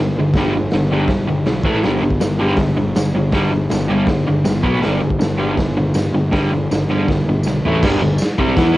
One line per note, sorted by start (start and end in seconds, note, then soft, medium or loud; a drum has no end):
0.00 0.13 G1 medium
0.00 0.15 G2 medium
0.00 0.15 D3 medium
0.17 0.33 G1 medium
0.17 0.34 G2 medium
0.17 0.34 D3 medium
0.34 0.67 G1 medium
0.34 0.53 G2 loud
0.34 0.53 D3 loud
0.34 kick loud
0.34 snare loud
0.34 open hi-hat soft
0.38 0.54 G3 loud
0.56 0.71 G2 medium
0.56 0.71 D3 medium
0.71 0.89 G1 medium
0.71 0.89 G2 medium
0.71 0.90 D3 medium
0.71 snare loud
0.71 open hi-hat soft
0.91 1.07 G1 medium
0.91 1.08 G2 medium
0.91 1.09 D3 medium
0.91 1.09 G3 medium
1.08 1.25 G1 medium
1.08 1.26 G2 medium
1.08 1.26 D3 medium
1.08 kick loud
1.08 snare loud
1.08 open hi-hat medium
1.28 1.45 G1 medium
1.28 1.44 G2 medium
1.28 1.45 D3 medium
1.46 1.63 B1 medium
1.46 1.63 G2 medium
1.46 1.64 D3 medium
1.46 snare loud
1.46 open hi-hat soft
1.64 1.81 A1 medium
1.64 1.83 A2 medium
1.64 1.83 E3 loud
1.64 1.83 A3 loud
1.64 kick loud
1.83 2.00 G1 medium
1.83 2.01 G2 medium
1.83 2.02 D3 medium
1.83 2.02 G3 loud
1.83 snare loud
1.83 open hi-hat soft
2.01 2.18 G1 medium
2.01 2.19 G2 medium
2.01 2.20 D3 medium
2.10 kick medium
2.20 2.54 G1 medium
2.20 2.38 G2 medium
2.20 2.38 D3 medium
2.20 snare loud
2.20 open hi-hat soft
2.20 tambourine loud
2.39 2.57 G2 medium
2.39 2.58 D3 medium
2.39 2.58 G3 medium
2.56 2.91 G1 medium
2.56 2.76 G2 medium
2.56 2.75 D3 medium
2.56 kick loud
2.56 snare loud
2.56 open hi-hat medium
2.77 2.94 G2 medium
2.77 2.94 D3 medium
2.95 3.12 G1 medium
2.95 3.13 G2 medium
2.95 3.13 D3 medium
2.95 snare loud
2.95 open hi-hat soft
2.95 tambourine loud
3.14 3.31 G1 medium
3.14 3.31 G2 medium
3.14 3.33 D3 medium
3.32 3.66 G1 medium
3.32 3.51 G2 loud
3.32 3.51 D3 medium
3.32 3.52 G3 loud
3.32 kick loud
3.32 snare loud
3.32 open hi-hat soft
3.52 3.69 G2 medium
3.52 3.69 D3 medium
3.69 3.88 G1 medium
3.69 3.87 G2 medium
3.69 3.88 D3 medium
3.69 snare loud
3.69 open hi-hat soft
3.69 tambourine loud
3.88 4.06 G1 medium
3.88 4.07 G2 medium
3.88 4.07 D3 medium
3.88 4.08 G3 medium
4.07 4.24 G1 medium
4.07 4.25 G2 medium
4.07 4.25 D3 medium
4.07 kick loud
4.07 snare loud
4.07 open hi-hat soft
4.27 4.45 G1 medium
4.27 4.43 G2 medium
4.27 4.44 D3 medium
4.44 4.63 G1 medium
4.44 4.62 G2 medium
4.44 4.62 D3 medium
4.44 snare loud
4.44 open hi-hat medium
4.44 tambourine loud
4.63 4.81 B1 medium
4.63 4.81 B2 medium
4.63 4.81 F#3 medium
4.63 4.82 B3 medium
4.63 kick loud
4.80 4.99 G2 loud
4.80 4.99 D3 loud
4.80 5.00 G3 loud
4.80 snare loud
4.80 open hi-hat soft
4.86 5.01 G1 medium
5.00 5.19 G1 medium
5.00 5.18 G2 medium
5.00 5.18 D3 medium
5.10 kick medium
5.19 5.55 G1 medium
5.19 5.37 G2 medium
5.19 5.37 D3 medium
5.19 snare loud
5.19 open hi-hat medium
5.19 tambourine loud
5.38 5.56 G2 medium
5.38 5.56 D3 medium
5.38 5.57 G3 medium
5.57 5.90 G1 medium
5.57 5.75 G2 medium
5.57 5.74 D3 medium
5.57 kick loud
5.57 snare loud
5.57 open hi-hat soft
5.77 5.94 G2 medium
5.77 5.94 D3 medium
5.94 6.12 G1 medium
5.94 6.12 G2 medium
5.94 6.12 D3 medium
5.94 snare loud
5.94 open hi-hat medium
5.94 tambourine medium
6.14 6.30 G1 medium
6.14 6.30 G2 medium
6.14 6.31 D3 medium
6.31 6.66 G1 medium
6.31 6.50 G2 medium
6.31 6.51 D3 loud
6.31 6.51 G3 medium
6.31 kick loud
6.31 snare loud
6.31 open hi-hat medium
6.53 6.69 G2 medium
6.53 6.69 D3 medium
6.71 6.88 G1 medium
6.71 6.88 G2 medium
6.71 6.88 D3 medium
6.71 snare loud
6.71 open hi-hat soft
6.71 tambourine loud
6.89 7.06 G1 medium
6.89 7.07 G2 medium
6.89 7.07 D3 medium
6.89 7.07 G3 medium
7.08 7.25 G1 medium
7.08 7.25 G2 medium
7.08 7.26 D3 medium
7.08 kick loud
7.08 snare loud
7.08 open hi-hat soft
7.28 7.43 G1 medium
7.28 7.44 G2 medium
7.28 7.44 D3 medium
7.43 7.61 B1 medium
7.43 7.63 G2 medium
7.43 snare medium
7.43 tambourine medium
7.48 7.63 D3 medium
7.63 7.80 A1 medium
7.63 7.82 A2 medium
7.63 7.83 E3 medium
7.63 floor tom medium
7.67 7.83 A3 medium
7.83 8.00 G1 medium
7.83 8.01 G2 loud
7.83 8.01 D3 loud
7.83 8.01 G3 loud
7.83 kick loud
7.83 snare loud
7.83 crash loud
7.83 crash medium
8.02 8.19 G1 medium
8.02 8.16 G2 medium
8.02 8.17 D3 medium
8.18 snare loud
8.18 tambourine loud
8.18 crash medium
8.38 8.56 C2 medium
8.38 8.56 C3 medium
8.38 8.57 G3 medium
8.38 8.57 C4 medium
8.38 kick medium
8.57 8.74 E2 medium
8.57 8.75 E3 medium
8.57 8.75 B3 medium
8.57 8.76 E4 loud
8.57 kick loud
8.57 snare loud
8.57 crash medium